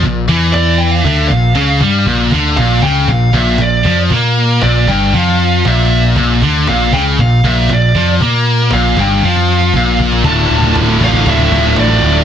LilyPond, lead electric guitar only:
\new Staff \with { instrumentName = "Lead electric guitar" } { \time 4/4 \key bes \lydian \tempo 4 = 118 r4 d''8 g''16 f''16 e''8 f''4 r8 | r4 f''8 g''8 f''8 e''8 d''8. r16 | r4 d''8 g''8 f''4 e''8. r16 | r4 f''8 g''8 f''8 e''8 d''8. r16 |
r4 f''8 g''8 f''4. r8 | a''4 r8 f''8 e''4 d''8. r16 | }